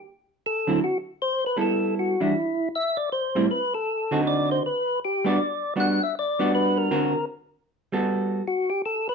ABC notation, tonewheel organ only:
X:1
M:4/4
L:1/8
Q:"Swing" 1/4=157
K:G
V:1 name="Tonewheel organ"
z2 A2 F z c B | A2 F E3 e d | c2 B A3 d c | B2 G d3 f e |
d2 B _B3 z2 | z4 F G A B |]